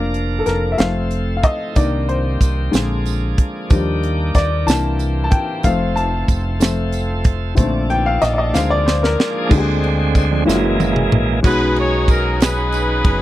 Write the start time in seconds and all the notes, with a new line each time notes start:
Already playing: F1 F3 A#3 D4 A#4
0.14 closed hi-hat
0.39 A4
0.46 F1 A#4, snare, closed hi-hat
0.72 E5
0.77 F1 F3 A3 C4 A4 F5, snare, closed hi-hat
1.11 closed hi-hat
1.37 F5
1.43 D#5, kick, closed hi-hat
1.75 C2 D#3 A#3 C4 D4 G4 D5, kick, closed hi-hat, tambourine
2.09 C5, closed hi-hat
2.41 C2, kick, closed hi-hat, tambourine
2.71 A#1 D3 F3 G#3 A#3 C4 D4 G#4, snare, closed hi-hat, tambourine
3.06 closed hi-hat, tambourine
3.38 kick, closed hi-hat
3.70 D#2 D#3 F3 G3 A#3 D4 G4, kick, closed hi-hat, tambourine
4.03 closed hi-hat
4.34 D#2 D5, kick, snare, closed hi-hat, tambourine
4.66 C2 E3 A#3 C4 D4 G4 A5, snare, closed hi-hat, tambourine
4.99 closed hi-hat, tambourine
5.24 A5
5.31 G5, kick, closed hi-hat
5.63 F1 F3 A3 C4 A4 F5, kick, closed hi-hat, tambourine
5.96 A5, closed hi-hat
6.28 F1, kick, closed hi-hat, tambourine
6.60 F3 A3 C4, snare, closed hi-hat, tambourine
6.92 closed hi-hat, tambourine
7.24 kick, closed hi-hat
7.55 A#1 D3 F3 A3 C4 D4 A4, kick, closed hi-hat, tambourine
7.90 G5, closed hi-hat
8.06 F5
8.22 A#1 D#5, snare, closed hi-hat, tambourine
8.33 D5
8.38 D#5
8.53 D2 D3 F3 G#3 A#3 C4 D4 G4 F5, snare, tambourine
8.59 G#4
8.70 D5
8.86 C5, snare, tambourine
9.03 A#4, snare
9.20 snare
9.49 D2 D3 G#3 A#3 C4 D4 F4 G4, kick, crash, tambourine
9.58 G#4
9.84 ride
10.15 kick, ride, tambourine
10.31 F3 D4
10.45 F#1 E3 G#3 A#3 C#4 E4 F4, snare, tambourine
10.54 F#4
10.63 G#3 E4
10.79 A#3 F#4, high tom, tambourine
10.95 G#4, mid tom
11.12 A#1, mid tom
11.43 B1 B2 F#3 G#3 B3 C#4 D#4 F#4 G#4 B4, kick, crash, tambourine
11.76 C#5, ride
12.08 A#4, kick, ride, tambourine
12.40 D#4 G#4 B4, snare, ride, tambourine
12.72 ride, tambourine
13.04 F#1, kick, ride